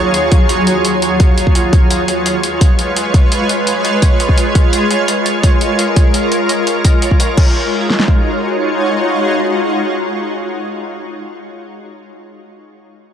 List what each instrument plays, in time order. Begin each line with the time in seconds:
Already playing: ambient pad D#2 F#3 F4 G#4 C#5
0.14 closed hi-hat
0.32 kick, closed hi-hat
0.49 closed hi-hat
0.67 closed hi-hat
0.85 closed hi-hat
1.02 closed hi-hat
1.20 kick, closed hi-hat
1.38 closed hi-hat
1.47 kick
1.55 closed hi-hat
1.73 ambient pad G#3 F4 B4 C#5, kick, closed hi-hat
1.91 closed hi-hat
2.08 closed hi-hat
2.26 closed hi-hat
2.43 closed hi-hat
2.61 kick, closed hi-hat
2.79 closed hi-hat
2.96 closed hi-hat
3.14 kick, closed hi-hat
3.32 closed hi-hat
3.49 closed hi-hat
3.67 closed hi-hat
3.85 closed hi-hat
4.02 kick, closed hi-hat
4.20 closed hi-hat
4.29 kick
4.38 closed hi-hat
4.55 ambient pad A#4, kick, closed hi-hat
4.73 closed hi-hat
4.91 closed hi-hat
5.08 closed hi-hat
5.26 closed hi-hat
5.43 kick, closed hi-hat
5.61 closed hi-hat
5.79 closed hi-hat
5.96 kick, closed hi-hat
6.14 closed hi-hat
6.32 closed hi-hat
6.49 closed hi-hat
6.67 closed hi-hat
6.85 kick, closed hi-hat
7.02 closed hi-hat
7.11 kick
7.20 closed hi-hat
7.37 ambient pad G#3 D#4 F4 F#4 C#5, kick, crash
7.90 snare
8.00 snare
8.08 kick